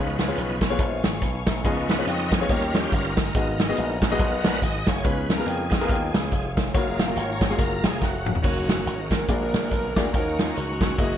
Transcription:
Already playing: C#2 C#3 F3 B3 D#4 F4 G#4 B4 C#5 F5 G#5 C#6
0.19 snare, closed hi-hat
0.28 B3 F4 G#4 C#5
0.36 B1, closed hi-hat
0.61 kick, snare, closed hi-hat
0.70 B3 F4 G#4 C#5
0.79 A#1, kick, closed hi-hat
1.04 G#1, snare, closed hi-hat
1.22 B1, kick, closed hi-hat
1.47 A#1, kick, snare, closed hi-hat
1.64 C#2 C#3 F3 B3 D#4 F4 G#4 D#5, kick, closed hi-hat
1.89 B4, snare, closed hi-hat
1.98 B3 F4 G#4 C#5
2.07 F2 D#5, closed hi-hat
2.26 D#5
2.32 C#5, kick, snare, closed hi-hat
2.41 B3 F4 G#4 C#5
2.49 D#2 D#3 G3 A#3 C#4 D#4 F4 A#4 C#5 D#5 G5 A#5, kick, closed hi-hat
2.55 G4
2.74 snare, closed hi-hat
2.80 G4
2.92 G1 A#4, kick, closed hi-hat
3.17 kick, snare, closed hi-hat
3.35 G#1 G#2 B3 F#4 G#4 D#5 F#5 G#5, kick, closed hi-hat
3.59 snare, closed hi-hat
3.69 B3 F#4 G#4 D#5
3.77 A#1, closed hi-hat
4.02 B3 F#4 A#4, kick, snare, closed hi-hat
4.12 B3 F#4 G#4 D#5
4.19 B1, kick, closed hi-hat
4.44 A#1 B4, snare, closed hi-hat
4.62 G#1 D#5, kick, closed hi-hat
4.87 F#1 C#5, kick, snare, closed hi-hat
5.04 C#2 C#3 B3 F4 G#4 B4 C#5 F5, kick, closed hi-hat
5.30 snare, closed hi-hat
5.34 A#4
5.38 B3 F4 G#4 A#4
5.46 F2 G#4, closed hi-hat
5.70 B3 D#4 F4, kick, snare, closed hi-hat
5.81 B3 E4 G#4 A#4
5.86 D#2 F4, kick, closed hi-hat
6.14 C#2, snare, closed hi-hat
6.32 F1, kick, closed hi-hat
6.57 kick, snare, closed hi-hat
6.74 F#1 G#3 A#3 F4 F#4 C#5 A#5, kick, closed hi-hat
6.99 snare, closed hi-hat
7.07 A#3 F4 F#4 A#4
7.16 G#1 C#5, closed hi-hat
7.41 kick, snare, closed hi-hat
7.50 G#3 F4 F#4 G#4
7.55 F#1 A#3 A#4, kick, closed hi-hat
7.84 F1 G#4, snare, closed hi-hat
8.02 F1 F#4, kick, snare
8.26 mid tom
8.35 floor tom
8.42 F#1 D#3 A#3 C#4 D#4 F#4 C#5 D#5 F#5 A#5, kick, crash
8.69 snare, closed hi-hat
8.86 G#1, closed hi-hat
9.11 A#4, kick, snare, closed hi-hat
9.28 A#1 A#2 D3 G#3 A#3 F#4 G#4 D5 F#5 G#5 A#5, kick, closed hi-hat
9.54 A#1, snare, closed hi-hat
9.72 B1, kick, closed hi-hat
9.96 D2 A#3 F#4 G#4 D5, kick, snare, closed hi-hat
10.13 D#2 D#3 A#3 C#4 D#4 F#4 A#4 C5 D#5 C#6, kick, closed hi-hat
10.19 C#5
10.39 F4, snare, closed hi-hat
10.56 C#2 F#4, closed hi-hat
10.81 kick, snare, closed hi-hat
10.98 F#1 E3 A#3 E4 G#4 D#5 G#5 D#6, kick, closed hi-hat

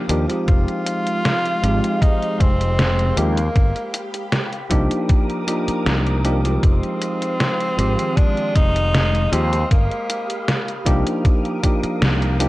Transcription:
Already playing: A#4 F5 D6 D#6
0.09 D#2 F3 A#3 D4 D#4 G4, closed hi-hat
0.28 F3 G#3 C4 D#4 G4, closed hi-hat
0.47 F1 G#3 F4 C6, kick, closed hi-hat
0.68 closed hi-hat
0.86 closed hi-hat
1.07 closed hi-hat
1.25 snare, closed hi-hat
1.45 closed hi-hat
1.62 G#1 F3 G#3 C4 D#4 G4, closed hi-hat
1.84 closed hi-hat
2.02 D#4, kick, closed hi-hat
2.22 closed hi-hat
2.40 F1 C4, kick, closed hi-hat
2.61 closed hi-hat
2.79 snare, closed hi-hat
2.99 closed hi-hat
3.16 D#2 F3 G#3 A#3 C4 D#4 G4, closed hi-hat
3.37 closed hi-hat
3.55 G1 G4 B5, kick, closed hi-hat
3.76 closed hi-hat
3.94 closed hi-hat
4.14 closed hi-hat
4.32 snare, closed hi-hat
4.53 closed hi-hat
4.70 C2 F3 A#3 D4 D#4 G4 A#4 D6 D#6, kick, closed hi-hat
4.91 closed hi-hat
5.09 kick, closed hi-hat
5.30 closed hi-hat
5.47 F3 A#3 D4 D#4 G4, closed hi-hat
5.68 muted fretless electric bass stroke, closed hi-hat
5.86 C2, snare, closed hi-hat
6.07 closed hi-hat
6.24 F3 A#3 D4 D#4 G4, closed hi-hat
6.43 F3 G#3 C4 D#4 G4, closed hi-hat
6.62 F1 G#3 C4 F5 C6 D#6, kick, closed hi-hat
6.83 closed hi-hat
7.02 closed hi-hat
7.22 closed hi-hat
7.40 snare, closed hi-hat
7.60 closed hi-hat
7.77 G#1 D#3 F3 G#3 C4 G4, closed hi-hat
7.99 closed hi-hat
8.17 D4, kick, closed hi-hat
8.37 closed hi-hat
8.55 F1 D#4, kick, closed hi-hat
8.76 closed hi-hat
8.94 snare, closed hi-hat
9.15 closed hi-hat
9.32 D#2 F3 G#3 C4 D#4 G4, closed hi-hat
9.53 closed hi-hat
9.71 G1 A#3 G4 B5, kick, closed hi-hat
9.91 closed hi-hat
10.10 closed hi-hat
10.30 closed hi-hat
10.48 snare, closed hi-hat
10.68 closed hi-hat
10.85 C2 F3 A#3 D4 D#4 G4 A#4 D6 D#6, kick, closed hi-hat
11.07 closed hi-hat
11.25 kick, closed hi-hat
11.45 closed hi-hat
11.63 F3 A#3 D4 D#4 G4, kick, closed hi-hat
11.83 muted fretless electric bass stroke, closed hi-hat
12.02 C2, snare, closed hi-hat
12.22 closed hi-hat
12.39 F3 A#3 D4 D#4 G4, closed hi-hat

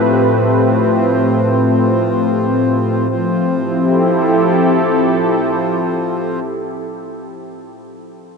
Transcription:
Already playing: A2 F3 A3 C4 G4 B4
3.09 F3 C4
3.25 C4
3.41 E4
3.58 G4
3.72 A4

